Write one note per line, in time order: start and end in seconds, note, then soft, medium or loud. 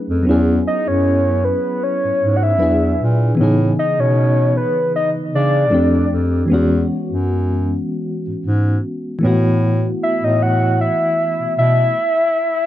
0.00 0.22 F#3 medium
0.00 0.23 A3 medium
0.00 0.24 C#4 medium
0.00 0.25 D#4 medium
0.00 0.26 G#4 medium
0.09 0.24 F2 medium
0.23 2.55 F#3 medium
0.23 2.56 B3 medium
0.23 2.57 C#4 medium
0.27 0.60 E2 loud
0.27 2.58 E4 medium
0.27 2.59 G#4 medium
0.67 0.89 D#5 medium
0.87 1.54 F#2 medium
0.87 1.46 C#5 medium
1.44 1.85 B4 medium
1.83 2.38 C#5 loud
2.04 2.11 G#2 soft
2.22 2.63 G#2 medium
2.36 2.45 F#5 medium
2.43 3.00 E5 loud
2.58 2.94 E2 medium
2.58 3.37 F#3 medium
2.58 3.38 D4 medium
2.58 3.39 E4 medium
2.58 3.38 B4 medium
2.63 3.40 G#4 medium
3.00 3.33 A#2 medium
3.35 3.72 A2 loud
3.35 5.68 C#3 medium
3.35 5.66 E3 medium
3.35 5.68 B3 medium
3.41 5.70 D#4 medium
3.41 5.71 G#4 medium
3.79 4.01 D#5 loud
3.99 4.65 B2 medium
3.99 4.56 C#5 loud
4.57 4.92 B4 medium
4.96 5.10 D#5 loud
5.16 5.23 C#3 soft
5.34 5.74 C#3 medium
5.34 6.08 D5 loud
5.70 6.06 F2 loud
5.70 6.49 F3 medium
5.70 6.50 A3 medium
5.70 6.50 C4 medium
5.70 6.51 D4 medium
5.70 6.51 G4 medium
6.12 6.45 F2 medium
6.46 9.17 E3 medium
6.46 9.18 G#3 medium
6.50 6.84 E2 loud
6.50 9.19 B3 medium
6.50 9.20 C#4 medium
6.54 9.21 F#4 medium
7.10 7.77 F#2 medium
8.27 8.34 G#2 soft
8.45 8.78 G#2 medium
9.19 11.90 E3 medium
9.19 11.91 A3 medium
9.23 9.90 A2 loud
9.23 11.92 B3 medium
9.23 11.93 E4 medium
9.27 11.94 F#4 medium
10.03 10.26 E5 loud
10.22 10.89 A2 medium
10.22 10.44 D#5 loud
10.42 10.80 F#5 loud
10.81 11.54 E5 loud
11.39 11.46 B2 soft
11.57 11.90 B2 medium
11.57 12.66 E5 loud